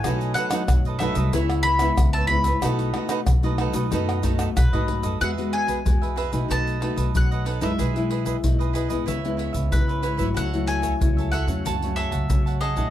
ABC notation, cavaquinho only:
X:1
M:4/4
L:1/16
Q:1/4=93
K:Bmix
V:1 name="Cavaquinho"
[DABd]2 [DABd] [DABd] z [ABd] [DABd] [ABd] [EBce]2 [EBce] [EBce] z [Bce]2 [Bce] | [DABd]2 [DABd] [DABd] z [ABd] [DABd] [ABd] [DABd]2 [DABd] [DABd] z [ABd]2 [ABd] | [FGBe]2 [FGBe] [FGBe] z [GBe] [FGBe] [GBe] [DABd]2 [DABd] [ABd]2 [ABd] [DABd] [DABd] | [EGB]2 [EGBd] [EGBd] z [GBd] [EGBd] [GBd] [EBce]2 [EBce] [Bce]2 [Bce] [EBce] [EBce] |
[FAce]2 [FAce] [FAce] z [Ace] [FAce] c [cfa]2 [Gcfa] [cfa]2 [cfa] [Gcfa] [Gcfa] |]